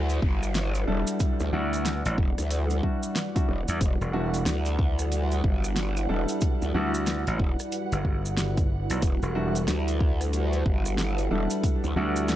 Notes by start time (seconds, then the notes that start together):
Already playing: D2 G3 E4 F#4 B4 D5 F#5, downlifter
0.09 closed hi-hat, cabasa
0.22 G1, kick
0.43 cross-stick, cabasa
0.54 snare, closed hi-hat, cabasa
0.75 closed hi-hat, cabasa
0.87 E1 G3 D4 E4 A4
1.07 closed hi-hat, cabasa
1.20 kick, closed hi-hat, cabasa
1.40 D2, cabasa
1.53 D2 G3 D4 E4 F#4
1.73 closed hi-hat, cabasa
1.85 cross-stick, snare, closed hi-hat, cabasa
2.05 A1, closed hi-hat, cabasa
2.18 E1, kick
2.38 D2, cross-stick, closed hi-hat, cabasa
2.50 closed hi-hat, cabasa
2.70 closed hi-hat, cabasa
2.83 G3 D4 E4 F#4, kick
3.03 cabasa
3.16 snare, closed hi-hat, cabasa
3.36 G3 D4 E4 F#4, kick, closed hi-hat, cabasa
3.49 E1
3.68 E2, closed hi-hat, cabasa
3.81 E1, kick, closed hi-hat, cabasa
4.01 E1, cabasa
4.13 G3 D4 E4 F#4
4.34 closed hi-hat, cabasa
4.46 D2, cross-stick, snare, closed hi-hat, cabasa
4.65 closed hi-hat, cabasa
4.79 kick
4.99 cross-stick, closed hi-hat, cabasa
5.02 cross-stick
5.05 cross-stick
5.12 cross-stick, closed hi-hat, cabasa
5.17 cross-stick
5.22 cross-stick
5.27 cross-stick
5.31 closed hi-hat, cabasa
5.44 G1, kick
5.64 cross-stick, cabasa
5.76 snare, closed hi-hat, cabasa
5.97 closed hi-hat, cabasa
6.09 E1 G3 D4 E4 A4
6.28 closed hi-hat, cabasa
6.41 kick, closed hi-hat, cabasa
6.62 D2, cabasa
6.74 D2 G3 D4 E4 F#4
6.94 closed hi-hat, cabasa
7.06 cross-stick, snare, closed hi-hat, cabasa
7.27 A1, closed hi-hat, cabasa
7.39 E1, kick
7.59 cross-stick, closed hi-hat, cabasa
7.72 closed hi-hat, cabasa
7.92 G1, closed hi-hat, cabasa
8.05 kick
8.25 cabasa
8.37 snare, closed hi-hat, cabasa
8.57 kick, closed hi-hat, cabasa
8.90 B1, closed hi-hat, cabasa
9.02 E1 A4, kick, closed hi-hat, cabasa
9.22 E1, cabasa
9.35 G3 D4 E4 F#4
9.55 closed hi-hat, cabasa
9.68 D2, cross-stick, snare, closed hi-hat, cabasa
9.88 closed hi-hat, cabasa
10.00 kick
10.21 cross-stick, closed hi-hat, cabasa
10.33 closed hi-hat, cabasa
10.53 closed hi-hat, cabasa
10.66 G1, kick
10.85 cross-stick, cabasa
10.98 snare, closed hi-hat, cabasa
11.18 closed hi-hat, cabasa
11.31 E1 G3 D4 E4 A4
11.50 closed hi-hat, cabasa
11.63 kick, closed hi-hat, cabasa
11.84 D2, cabasa
11.96 D2 G3 D4 E4 F#4
12.16 closed hi-hat, cabasa
12.28 cross-stick, snare, closed hi-hat, cabasa